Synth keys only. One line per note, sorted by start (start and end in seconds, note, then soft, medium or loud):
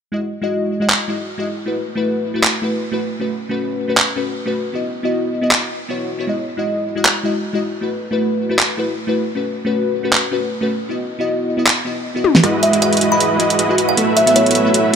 0.12 0.20 G#3 medium
0.12 0.20 E4 medium
0.12 0.21 F#4 medium
0.12 0.21 D#5 medium
0.42 0.78 G#3 medium
0.42 0.78 E4 medium
0.42 0.79 F#4 medium
0.42 0.79 D#5 medium
0.80 0.87 G#3 medium
0.80 0.87 E4 medium
0.80 0.87 F#4 medium
0.80 0.88 D#5 medium
1.08 1.16 G#3 medium
1.08 1.16 E4 medium
1.08 1.17 F#4 medium
1.08 1.17 D#5 medium
1.38 1.44 G#3 medium
1.38 1.45 E4 medium
1.38 1.45 F#4 medium
1.38 1.46 D#5 medium
1.66 1.74 A3 medium
1.66 1.74 E4 medium
1.66 1.74 F#4 medium
1.66 1.75 B4 medium
1.95 2.32 A3 medium
1.95 2.32 E4 medium
1.95 2.33 F#4 medium
1.95 2.33 B4 medium
2.34 2.41 A3 medium
2.34 2.41 E4 medium
2.34 2.41 F#4 medium
2.34 2.42 B4 medium
2.62 2.70 A3 medium
2.62 2.70 E4 medium
2.62 2.71 F#4 medium
2.62 2.71 B4 medium
2.92 2.98 A3 medium
2.92 2.99 E4 medium
2.92 2.99 F#4 medium
2.92 2.99 B4 medium
3.20 3.28 A3 medium
3.20 3.28 C#4 medium
3.20 3.28 F#4 medium
3.20 3.29 B4 medium
3.49 3.86 A3 medium
3.49 3.86 C#4 medium
3.49 3.86 F#4 medium
3.49 3.87 B4 medium
3.88 3.94 A3 medium
3.88 3.95 C#4 medium
3.88 3.95 F#4 medium
3.88 3.95 B4 medium
4.16 4.24 A3 medium
4.16 4.24 C#4 medium
4.16 4.24 F#4 medium
4.16 4.25 B4 medium
4.45 4.52 A3 medium
4.45 4.53 C#4 medium
4.45 4.53 F#4 medium
4.45 4.53 B4 medium
4.73 4.81 B3 medium
4.73 4.82 E4 medium
4.73 4.82 F#4 medium
4.73 4.82 D#5 medium
5.03 5.40 B3 medium
5.03 5.40 E4 medium
5.03 5.40 F#4 medium
5.03 5.41 D#5 medium
5.42 5.48 B3 medium
5.42 5.49 E4 medium
5.42 5.49 F#4 medium
5.42 5.49 D#5 medium
5.89 6.16 B3 medium
5.89 6.17 E4 medium
5.89 6.17 F#4 medium
5.89 6.17 C#5 medium
6.19 6.26 B3 medium
6.19 6.26 E4 medium
6.19 6.26 F#4 medium
6.19 6.27 C#5 medium
6.27 6.35 G#3 medium
6.27 6.36 E4 medium
6.27 6.36 F#4 medium
6.27 6.36 D#5 medium
6.57 6.93 G#3 medium
6.57 6.94 E4 medium
6.57 6.94 F#4 medium
6.57 6.94 D#5 medium
6.95 7.02 G#3 medium
6.95 7.03 E4 medium
6.95 7.03 F#4 medium
6.95 7.03 D#5 medium
7.23 7.31 G#3 medium
7.23 7.32 E4 medium
7.23 7.32 F#4 medium
7.23 7.32 D#5 medium
7.53 7.60 G#3 medium
7.53 7.60 E4 medium
7.53 7.61 F#4 medium
7.53 7.61 D#5 medium
7.81 7.89 A3 medium
7.81 7.89 E4 medium
7.81 7.90 F#4 medium
7.81 7.90 B4 medium
8.11 8.47 A3 medium
8.11 8.48 E4 medium
8.11 8.48 F#4 medium
8.11 8.48 B4 medium
8.49 8.56 A3 medium
8.49 8.56 E4 medium
8.49 8.57 F#4 medium
8.49 8.57 B4 medium
8.77 8.85 A3 medium
8.77 8.86 E4 medium
8.77 8.86 F#4 medium
8.77 8.86 B4 medium
9.07 9.14 A3 medium
9.07 9.14 E4 medium
9.07 9.14 F#4 medium
9.07 9.15 B4 medium
9.35 9.43 A3 medium
9.35 9.43 C#4 medium
9.35 9.44 F#4 medium
9.35 9.44 B4 medium
9.65 10.01 A3 medium
9.65 10.01 C#4 medium
9.65 10.02 F#4 medium
9.65 10.02 B4 medium
10.03 10.10 A3 medium
10.03 10.10 C#4 medium
10.03 10.11 F#4 medium
10.03 10.11 B4 medium
10.31 10.39 A3 medium
10.31 10.39 C#4 medium
10.31 10.40 F#4 medium
10.31 10.40 B4 medium
10.61 10.68 A3 medium
10.61 10.68 C#4 medium
10.61 10.68 F#4 medium
10.61 10.69 B4 medium
10.89 10.97 B3 medium
10.89 10.97 E4 medium
10.89 10.97 F#4 medium
10.89 10.98 D#5 medium
11.19 11.55 B3 medium
11.19 11.55 E4 medium
11.19 11.56 F#4 medium
11.19 11.56 D#5 medium
11.57 11.64 B3 medium
11.57 11.64 E4 medium
11.57 11.64 F#4 medium
11.57 11.65 D#5 medium
11.85 11.93 B3 medium
11.85 11.93 E4 medium
11.85 11.94 F#4 medium
11.85 11.94 D#5 medium
12.15 12.21 B3 medium
12.15 12.22 E4 medium
12.15 12.22 F#4 medium
12.15 12.22 D#5 medium
12.43 12.51 G#3 medium
12.43 12.51 E4 medium
12.43 12.51 F#4 medium
12.43 12.52 D#5 medium
12.72 13.09 G#3 medium
12.72 13.09 E4 medium
12.72 13.09 F#4 medium
12.72 13.10 D#5 medium
13.11 13.18 G#3 medium
13.11 13.18 E4 medium
13.11 13.18 F#4 medium
13.11 13.19 D#5 medium
13.39 13.47 G#3 medium
13.39 13.47 E4 medium
13.39 13.47 F#4 medium
13.39 13.48 D#5 medium
13.69 13.75 G#3 medium
13.69 13.76 E4 medium
13.69 13.76 F#4 medium
13.69 13.76 D#5 medium
13.96 14.04 B3 medium
13.96 14.05 F#4 medium
13.96 14.05 A4 medium
13.96 14.05 E5 medium
14.26 14.63 B3 medium
14.26 14.63 F#4 medium
14.26 14.63 A4 medium
14.26 14.64 E5 medium
14.65 14.71 B3 medium
14.65 14.72 F#4 medium
14.65 14.72 A4 medium
14.65 14.72 E5 medium
14.93 14.96 B3 medium